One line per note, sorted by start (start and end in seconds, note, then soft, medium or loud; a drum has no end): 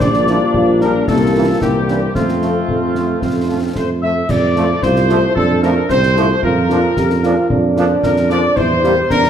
0.00 0.41 A#1 medium
0.00 1.04 F3 medium
0.00 1.04 G3 medium
0.00 1.04 A#3 medium
0.00 1.04 D4 medium
0.00 0.26 D4 medium
0.00 0.77 D5 loud
0.00 concert bass drum medium
0.00 snare medium
0.00 crash soft
0.14 snare medium
0.27 0.37 F3 medium
0.27 0.37 G3 medium
0.27 0.40 E4 medium
0.27 snare medium
0.54 1.02 A#1 medium
0.54 0.83 F4 medium
0.54 concert bass drum medium
0.81 0.91 F3 medium
0.81 0.91 G3 medium
0.81 1.09 D4 medium
0.81 1.08 A#4 medium
0.81 snare soft
1.08 1.55 C2 medium
1.08 1.60 E3 medium
1.08 1.58 G3 medium
1.08 1.58 A#3 medium
1.08 1.60 C4 medium
1.08 1.34 E4 medium
1.08 1.58 A4 medium
1.08 concert bass drum medium
1.08 snare medium
1.35 1.44 E3 medium
1.35 1.44 A#3 medium
1.35 1.59 F4 medium
1.61 2.09 C2 medium
1.61 2.11 E3 medium
1.61 2.11 G3 medium
1.61 2.11 A#3 medium
1.61 2.11 C4 medium
1.61 1.74 E4 medium
1.61 2.12 G4 medium
1.61 concert bass drum medium
1.61 snare medium
1.88 1.97 E3 medium
1.88 1.97 A#3 medium
1.88 2.01 D4 medium
1.88 snare soft
2.15 2.62 F2 medium
2.15 4.02 F3 medium
2.15 3.98 A3 medium
2.15 3.72 C4 medium
2.15 2.60 C4 medium
2.15 3.72 F4 medium
2.15 concert bass drum medium
2.15 snare medium
2.29 snare soft
2.42 2.51 F3 soft
2.42 2.51 A3 medium
2.42 snare soft
2.68 3.16 F2 medium
2.68 3.23 A3 medium
2.68 concert bass drum medium
2.95 3.05 F3 medium
2.95 3.05 A3 soft
2.95 snare soft
3.21 3.69 F2 medium
3.21 3.75 C4 medium
3.21 concert bass drum medium
3.21 snare medium
3.48 3.58 F3 medium
3.48 3.58 A3 soft
3.75 4.23 F2 medium
3.75 4.25 A3 medium
3.75 3.81 C5 medium
3.75 3.88 C5 medium
3.75 concert bass drum medium
3.75 snare medium
4.02 4.12 F3 soft
4.02 4.12 A3 soft
4.02 4.27 E5 medium
4.28 4.74 F2 medium
4.28 4.78 D5 medium
4.28 4.83 D5 medium
4.28 concert bass drum medium
4.28 crash medium
4.56 4.65 F3 medium
4.56 4.65 A3 medium
4.56 4.66 A3 medium
4.56 4.66 C4 medium
4.56 4.66 F4 medium
4.56 snare soft
4.82 5.27 C2 medium
4.82 5.11 F4 medium
4.82 5.36 C5 medium
4.82 5.32 C5 medium
4.82 5.36 C5 loud
4.82 concert bass drum medium
4.82 snare medium
4.96 snare medium
5.09 5.19 F3 medium
5.09 5.19 A3 medium
5.09 5.20 A3 medium
5.09 5.20 C4 medium
5.09 5.36 E4 medium
5.09 5.19 F4 medium
5.09 snare medium
5.35 5.80 F2 medium
5.35 5.86 D4 medium
5.35 5.60 A4 medium
5.35 5.61 A4 medium
5.35 concert bass drum medium
5.62 5.72 F3 medium
5.62 5.72 A3 medium
5.62 5.73 A3 medium
5.62 5.73 C4 medium
5.62 5.73 F4 medium
5.62 5.87 A#4 medium
5.62 5.74 A#4 medium
5.62 5.88 A#4 medium
5.62 snare soft
5.89 6.34 C2 medium
5.89 6.15 C4 medium
5.89 6.43 C5 medium
5.89 6.39 C5 medium
5.89 6.40 C5 loud
5.89 concert bass drum medium
5.89 snare medium
6.03 snare medium
6.16 6.25 F3 medium
6.16 6.25 A3 medium
6.16 6.26 A3 medium
6.16 6.26 C4 medium
6.16 6.29 E4 medium
6.16 6.26 F4 medium
6.16 snare medium
6.42 6.87 F2 medium
6.42 6.93 F4 medium
6.42 7.76 A#4 medium
6.42 7.73 A#4 medium
6.42 concert bass drum medium
6.70 6.79 F3 medium
6.70 6.79 A#3 medium
6.70 6.79 D4 medium
6.70 6.79 F4 medium
6.70 snare soft
6.96 7.36 F2 medium
6.96 7.09 G4 medium
6.96 concert bass drum medium
6.96 snare medium
7.10 snare medium
7.23 7.33 F3 medium
7.23 7.33 A#3 medium
7.23 7.33 D4 medium
7.23 7.33 F4 medium
7.23 7.48 F4 medium
7.23 snare medium
7.50 7.94 F2 medium
7.50 8.58 D4 medium
7.50 concert bass drum medium
7.76 7.86 F3 medium
7.76 7.86 A#3 medium
7.76 7.86 D4 medium
7.76 7.86 F4 medium
7.76 snare soft
8.02 8.48 F2 medium
8.02 8.08 A#4 medium
8.02 8.28 A#4 medium
8.02 8.16 A#4 medium
8.02 concert bass drum medium
8.02 snare medium
8.17 snare medium
8.29 8.40 F3 medium
8.29 8.39 A#3 medium
8.29 8.39 D4 medium
8.29 8.40 D4 medium
8.29 8.39 F4 medium
8.29 8.54 D5 medium
8.29 8.55 D5 medium
8.29 snare medium
8.55 9.01 E2 medium
8.55 8.83 E4 medium
8.55 9.06 C5 medium
8.55 9.10 C5 medium
8.55 9.10 C5 loud
8.55 concert bass drum medium
8.55 crash soft
8.83 8.93 G3 medium
8.83 8.93 A#3 medium
8.83 8.93 C4 medium
8.83 8.93 G4 medium
8.83 8.95 G4 medium
8.83 snare soft
9.09 9.30 E2 medium
9.09 9.30 D4 medium
9.09 9.30 A#4 medium
9.09 9.30 A#4 loud
9.09 concert bass drum medium
9.09 snare medium
9.24 snare medium